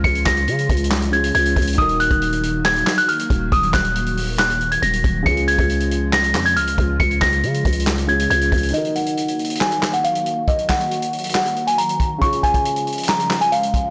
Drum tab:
HH |x-----x-----------x-----x-----x-----x---x---x---------x-----x-----x-----x-----x-----x--x--x--x--|x-----x-----x-----x-----x-----x-----x-----------------x-----------x-----x-----x-----x-----------|x-----x-----------x-----x-----x-----o-----------p-----x-----x-----x-----x-----x-----x-----------|x-----x-----x-----x-----x-----x-----x-----------------x-----------x-----x-----x-----x-----------|
CP |------------x-----------------------------------x-----------------------------------------------|------------------------------------------------x-----------x-----------------------------------|------------x-----------------------------------x-----------------------------------------------|------------------------------------------------x-----------x-----------------------------------|
SD |------------o-----------------------------------o-----------------------------------------------|------------------------------------------------o-----------o-----------------------------------|------------o-----------------------------------o-----------------------------------------------|------------------------------------------------o-----------o-----------------------------------|
BD |o-----------o-----------------------o-----------------------------------------------o-----------|o-----------------o-----------------------------------------------------------------o-----------|o-----------o-----------------------------------------------------------------------o-----------|o-----------------o-----------------------------------------------------------------o-----------|

HH |x-----x-----------x-----x-----x-----x---x---x---------x-----x-----x-----x-----x-----x--x--x--x--|x-----x-----x-----x-----x-----x-----x--x--x--x--------x-----------x-----x-----x-----x-----------|x-----x-----------x-----x-----x-----x--x--x--x--------x-----x-----x-----x-----x-----x-----------|x-----x-----x-----x-----x-----x-----x--x--x--x--------x-----------x-----x-----x-----x-----------|
CP |------------x-----------------------------------x-----------------------------------------------|------------------------------------------------x-----------x-----------------------------------|------------x-----------------------------------x-----------------------------------------------|------------------------------------------------x-----------x-----------------------------------|
SD |------------o-----------------------------------o-----------------------------------------------|------------------------------------------------o-----------o-----------------------------------|------------o-----------------------------------o-----------------------------------------------|------------------------------------------------o-----------o-----------------------------------|
BD |o-----------o-----------------------o-----------------------------------------------o-----------|------------------------------------------------------------------------------------------------|o-----------o-----------------------------------------------------------------------o-----------|o-----------o-----o-----------------------------------------------------------------o-----------|